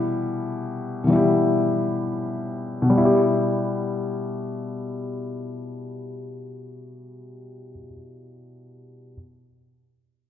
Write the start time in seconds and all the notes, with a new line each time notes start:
Already playing: B2 E3 G3 E4 G4
1.04 B2 E3
1.10 G3 E4
1.16 G4
2.82 B2
2.90 G3
2.97 E4
3.05 G4